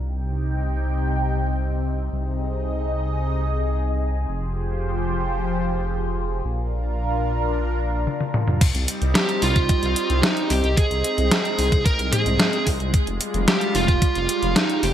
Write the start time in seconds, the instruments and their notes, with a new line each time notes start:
Already playing: detuned saw bass C2, analog synth pad C3 C4 D#4 G4 G5
2.12 detuned saw bass C2, analog synth pad D#4 G#4 D#5
4.29 detuned saw bass F1, analog synth pad F3 F4 G4 C5
6.45 detuned saw bass A#1, analog synth pad D4 F4 A#4
8.07 high tom
8.21 high tom
8.34 mid tom
8.48 mid tom
8.61 analog synth pad G3 C4 D#4, kick, closed hi-hat, crash
8.75 detuned saw bass C2, closed hi-hat
8.88 closed hi-hat
9.02 detuned saw bass C2, closed hi-hat
9.15 lead electric guitar G4, snare, closed hi-hat
9.29 closed hi-hat
9.42 detuned saw bass C2, lead electric guitar F4, open hi-hat
9.56 detuned saw bass C2, kick, closed hi-hat
9.69 kick, closed hi-hat
9.83 detuned saw bass C2, closed hi-hat
9.96 closed hi-hat
10.10 detuned saw bass C2, closed hi-hat
10.23 lead electric guitar D#4, snare, closed hi-hat
10.37 closed hi-hat
10.50 detuned saw bass C2, lead electric guitar G4, open hi-hat
10.64 detuned saw bass C2, closed hi-hat
10.77 analog synth pad G#3, lead electric guitar G#4, kick, closed hi-hat
10.91 detuned saw bass C2, closed hi-hat
11.04 closed hi-hat
11.18 detuned saw bass C2, closed hi-hat
11.31 snare, closed hi-hat
11.45 closed hi-hat
11.58 detuned saw bass C2, open hi-hat
11.72 detuned saw bass C2, kick, closed hi-hat
11.86 lead electric guitar A#4, kick, closed hi-hat
11.99 detuned saw bass C2, closed hi-hat
12.13 lead electric guitar G#4, closed hi-hat, mid tom
12.26 detuned saw bass C2, closed hi-hat
12.40 snare, closed hi-hat
12.53 closed hi-hat
12.67 detuned saw bass C2, kick, open hi-hat
12.80 detuned saw bass C2, closed hi-hat
12.94 analog synth pad G3 F4, kick, closed hi-hat
13.07 detuned saw bass F1, closed hi-hat
13.21 closed hi-hat
13.34 detuned saw bass F1, closed hi-hat
13.48 lead electric guitar G4, snare, closed hi-hat
13.61 closed hi-hat
13.75 detuned saw bass F1, lead electric guitar F4, open hi-hat
13.88 detuned saw bass F1, kick, closed hi-hat
14.02 kick, closed hi-hat
14.15 detuned saw bass F1, closed hi-hat
14.29 closed hi-hat
14.43 detuned saw bass F1, closed hi-hat
14.56 lead electric guitar D#4, snare, closed hi-hat
14.70 closed hi-hat
14.83 detuned saw bass F1, lead electric guitar G4, open hi-hat